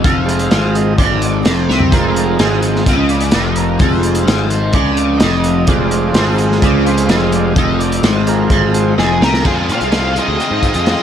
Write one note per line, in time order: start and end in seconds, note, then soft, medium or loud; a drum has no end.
0.00 0.81 F2 medium
0.00 0.17 F3 medium
0.00 1.39 C4 medium
0.04 0.48 F1 medium
0.04 0.51 F2 loud
0.04 0.77 F5 loud
0.04 kick loud
0.04 closed hi-hat medium
0.17 2.04 F3 medium
0.25 0.93 G#3 medium
0.25 0.94 C4 soft
0.25 0.94 F4 medium
0.25 closed hi-hat medium
0.39 closed hi-hat medium
0.51 0.95 G#1 medium
0.51 0.98 G#2 medium
0.51 snare loud
0.51 closed hi-hat medium
0.74 0.96 D#5 medium
0.74 closed hi-hat medium
0.81 3.24 F2 medium
0.98 1.42 G#1 medium
0.98 1.45 G#2 medium
0.98 1.47 D5 loud
0.98 kick loud
0.98 closed hi-hat medium
1.22 closed hi-hat medium
1.39 3.84 C4 medium
1.45 1.67 F1 loud
1.45 1.68 F2 loud
1.45 1.95 C5 medium
1.45 snare loud
1.45 closed hi-hat medium
1.69 1.91 C2 medium
1.69 1.92 C3 medium
1.69 snare medium
1.80 floor tom medium
1.91 2.36 F1 medium
1.91 2.39 F2 loud
1.91 2.61 G#3 medium
1.91 2.61 C4 medium
1.91 2.63 F4 medium
1.91 2.41 A#4 medium
1.91 kick loud
1.91 closed hi-hat medium
2.04 2.64 F3 medium
2.16 closed hi-hat medium
2.39 2.83 G#1 medium
2.39 2.86 G#2 loud
2.39 2.61 G#4 medium
2.39 snare loud
2.39 closed hi-hat medium
2.62 4.44 F3 medium
2.62 2.83 G#3 soft
2.62 2.84 C4 soft
2.62 2.85 F4 soft
2.62 closed hi-hat medium
2.75 snare soft
2.86 3.30 C#2 loud
2.86 3.34 C#3 loud
2.86 2.93 F5 loud
2.86 kick loud
2.86 closed hi-hat medium
2.99 3.10 D#5 medium
3.09 3.46 D5 medium
3.09 closed hi-hat medium
3.20 closed hi-hat medium
3.25 5.66 F2 medium
3.31 3.77 F1 medium
3.31 3.80 F2 loud
3.31 snare loud
3.31 closed hi-hat medium
3.44 3.55 C5 medium
3.56 3.79 A#4 medium
3.56 closed hi-hat medium
3.79 4.24 F1 medium
3.79 4.27 F2 loud
3.79 4.48 G#3 medium
3.79 4.48 C4 medium
3.79 kick loud
3.79 closed hi-hat medium
3.84 6.27 C4 medium
3.84 4.49 F4 medium
4.03 closed hi-hat medium
4.15 closed hi-hat medium
4.27 4.72 G#1 medium
4.27 4.74 G#2 loud
4.27 snare loud
4.27 closed hi-hat medium
4.44 5.09 F3 medium
4.50 4.75 C5 medium
4.50 closed hi-hat medium
4.73 5.18 C#2 medium
4.73 5.21 C#3 loud
4.73 5.18 D5 loud
4.73 kick loud
4.73 closed hi-hat medium
4.97 closed hi-hat medium
5.09 6.89 F3 medium
5.18 5.66 F1 loud
5.18 5.68 D#5 loud
5.18 snare loud
5.18 closed hi-hat medium
5.23 5.68 F2 loud
5.44 closed hi-hat medium
5.67 6.12 F1 medium
5.67 8.11 F2 medium
5.67 6.15 F2 loud
5.67 7.53 G#3 medium
5.67 7.53 C4 medium
5.67 7.53 F4 medium
5.67 6.17 D5 medium
5.67 kick loud
5.67 closed hi-hat medium
5.91 closed hi-hat medium
6.14 6.59 G#1 loud
6.14 6.62 G#2 loud
6.14 6.37 C5 medium
6.14 snare loud
6.14 closed hi-hat medium
6.27 11.03 C4 medium
6.38 closed hi-hat medium
6.52 snare soft
6.62 7.07 C#2 medium
6.62 7.09 C#3 loud
6.62 6.86 D5 loud
6.62 kick loud
6.62 closed hi-hat medium
6.87 7.51 F3 medium
6.87 7.09 C5 medium
6.87 closed hi-hat medium
6.98 closed hi-hat medium
7.09 7.53 F1 loud
7.09 7.56 F2 loud
7.09 7.33 D#5 loud
7.09 snare loud
7.09 closed hi-hat medium
7.32 7.46 D5 medium
7.32 closed hi-hat medium
7.51 9.36 F3 medium
7.56 8.01 F1 medium
7.56 8.03 F2 loud
7.56 7.82 D#5 loud
7.56 kick loud
7.56 closed hi-hat medium
7.79 8.04 D5 medium
7.79 closed hi-hat medium
7.92 closed hi-hat medium
8.03 8.47 G#1 medium
8.03 8.50 G#2 medium
8.03 8.29 C5 loud
8.03 snare loud
8.03 closed hi-hat medium
8.11 11.03 F2 medium
8.27 8.95 G#3 soft
8.27 8.95 C4 soft
8.27 8.95 F4 medium
8.27 8.50 A#4 medium
8.27 closed hi-hat medium
8.50 8.94 G#1 medium
8.50 8.97 G#2 loud
8.50 kick loud
8.50 closed hi-hat medium
8.74 11.03 C3 medium
8.74 8.99 C5 medium
8.74 closed hi-hat medium
8.97 9.20 F1 loud
8.97 9.21 F2 loud
8.97 9.21 G#4 medium
8.97 9.19 D#5 medium
8.97 snare medium
9.21 9.44 C2 medium
9.21 9.43 C3 loud
9.21 9.47 A#4 medium
9.21 snare medium
9.34 11.03 F3 medium
9.34 snare medium
9.43 9.92 F2 medium
9.43 9.71 F2 medium
9.43 9.92 C3 medium
9.43 9.70 F3 medium
9.43 9.68 G#3 medium
9.43 9.67 C4 loud
9.43 9.67 F4 medium
9.43 11.03 G#4 medium
9.43 9.53 G#4 medium
9.43 11.03 C5 medium
9.43 11.03 F5 medium
9.43 11.03 C6 medium
9.43 kick loud
9.43 crash medium
9.67 9.79 A#2 medium
9.67 9.90 F3 soft
9.67 9.90 G#3 medium
9.67 9.91 C4 medium
9.67 9.93 F4 medium
9.67 closed hi-hat medium
9.72 10.19 F5 medium
9.81 10.19 C2 medium
9.81 closed hi-hat medium
9.90 10.16 F3 medium
9.90 10.16 G#3 medium
9.90 10.15 C4 medium
9.90 10.14 F4 medium
9.90 snare loud
9.90 closed hi-hat medium
10.16 10.64 F2 medium
10.16 10.64 C3 medium
10.16 10.38 F3 medium
10.16 10.40 G#3 medium
10.16 10.40 C4 medium
10.16 10.41 F4 medium
10.16 closed hi-hat medium
10.20 11.03 D#5 medium
10.28 10.38 D2 medium
10.39 10.64 F3 medium
10.39 10.63 G#3 medium
10.39 10.62 C4 medium
10.39 10.62 F4 medium
10.39 closed hi-hat soft
10.51 10.70 G#2 medium
10.63 10.87 F3 medium
10.63 10.87 G#3 medium
10.63 10.88 C4 medium
10.63 10.88 F4 medium
10.63 kick medium
10.63 closed hi-hat medium
10.74 10.94 F2 medium
10.74 closed hi-hat medium
10.86 11.03 F2 medium
10.86 11.03 C3 medium
10.86 11.03 F3 medium
10.86 11.03 G#3 medium
10.86 11.03 C4 loud
10.86 11.03 F4 loud
10.86 snare medium
10.86 closed hi-hat medium